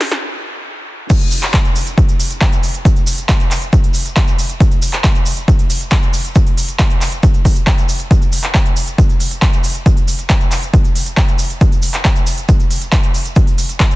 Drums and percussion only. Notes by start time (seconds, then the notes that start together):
0.01 snare, open hi-hat
0.12 snare, closed hi-hat
1.10 kick, closed hi-hat, crash, shaker
1.21 closed hi-hat, shaker
1.31 open hi-hat, shaker
1.43 clap, closed hi-hat, shaker
1.54 kick, clap, closed hi-hat, shaker
1.65 closed hi-hat, shaker
1.76 open hi-hat, shaker
1.87 closed hi-hat, shaker
1.98 kick, closed hi-hat, shaker
2.09 closed hi-hat, shaker
2.20 open hi-hat, shaker
2.31 closed hi-hat, shaker
2.41 kick, clap, closed hi-hat, shaker
2.52 closed hi-hat, shaker
2.63 open hi-hat, shaker
2.74 closed hi-hat, shaker
2.85 kick, closed hi-hat, shaker
2.96 closed hi-hat, shaker
3.07 open hi-hat, shaker
3.18 closed hi-hat, shaker
3.29 kick, clap, closed hi-hat, shaker
3.40 closed hi-hat, shaker
3.51 clap, open hi-hat, shaker
3.62 closed hi-hat, shaker
3.73 kick, closed hi-hat, shaker
3.84 closed hi-hat, shaker
3.94 open hi-hat, shaker
4.06 closed hi-hat, shaker
4.17 kick, clap, closed hi-hat, shaker
4.28 closed hi-hat, shaker
4.39 open hi-hat, shaker
4.49 closed hi-hat, shaker
4.60 kick, closed hi-hat, shaker
4.71 closed hi-hat, shaker
4.82 open hi-hat, shaker
4.93 clap, closed hi-hat, shaker
5.04 kick, clap, closed hi-hat, shaker
5.15 closed hi-hat, shaker
5.26 open hi-hat, shaker
5.37 closed hi-hat, shaker
5.48 kick, closed hi-hat, shaker
5.59 closed hi-hat, shaker
5.70 open hi-hat, shaker
5.81 closed hi-hat, shaker
5.91 kick, clap, closed hi-hat, shaker
6.03 closed hi-hat, shaker
6.13 open hi-hat, shaker
6.25 closed hi-hat, shaker
6.35 kick, closed hi-hat, shaker
6.47 closed hi-hat, shaker
6.58 open hi-hat, shaker
6.68 closed hi-hat, shaker
6.79 kick, clap, closed hi-hat, shaker
6.90 closed hi-hat, shaker
7.01 clap, open hi-hat, shaker
7.12 closed hi-hat, shaker
7.23 kick, closed hi-hat, shaker
7.34 closed hi-hat, shaker
7.45 kick, open hi-hat, shaker
7.56 closed hi-hat, shaker
7.67 kick, clap, closed hi-hat, shaker
7.78 closed hi-hat, shaker
7.89 open hi-hat, shaker
7.99 closed hi-hat, shaker
8.11 kick, closed hi-hat, shaker
8.22 closed hi-hat, shaker
8.32 open hi-hat, shaker
8.44 clap, closed hi-hat, shaker
8.55 kick, clap, closed hi-hat, shaker
8.66 closed hi-hat, shaker
8.76 open hi-hat, shaker
8.87 closed hi-hat, shaker
8.98 kick, closed hi-hat, shaker
9.09 closed hi-hat, shaker
9.20 open hi-hat, shaker
9.31 closed hi-hat, shaker
9.42 kick, clap, closed hi-hat, shaker
9.53 closed hi-hat, shaker
9.64 open hi-hat, shaker
9.75 closed hi-hat, shaker
9.86 kick, closed hi-hat, shaker
9.97 closed hi-hat, shaker
10.08 open hi-hat, shaker
10.19 closed hi-hat, shaker
10.29 kick, clap, closed hi-hat, shaker
10.40 closed hi-hat, shaker
10.51 clap, open hi-hat, shaker
10.63 closed hi-hat, shaker
10.74 kick, closed hi-hat, shaker
10.85 closed hi-hat, shaker
10.95 open hi-hat, shaker
11.06 closed hi-hat, shaker
11.17 kick, clap, closed hi-hat, shaker
11.28 closed hi-hat, shaker
11.39 open hi-hat, shaker
11.50 closed hi-hat, shaker
11.61 kick, closed hi-hat, shaker
11.72 closed hi-hat, shaker
11.82 open hi-hat, shaker
11.94 clap, closed hi-hat, shaker
12.05 kick, clap, closed hi-hat, shaker
12.16 closed hi-hat, shaker
12.27 open hi-hat, shaker
12.38 closed hi-hat, shaker
12.49 kick, closed hi-hat, shaker
12.60 closed hi-hat, shaker
12.71 open hi-hat, shaker
12.82 closed hi-hat, shaker
12.93 kick, clap, closed hi-hat, shaker
13.03 closed hi-hat, shaker
13.14 open hi-hat, shaker
13.25 closed hi-hat, shaker
13.36 kick, closed hi-hat, shaker
13.47 closed hi-hat, shaker
13.58 open hi-hat, shaker
13.69 closed hi-hat, shaker
13.80 kick, clap, closed hi-hat, shaker
13.91 closed hi-hat, shaker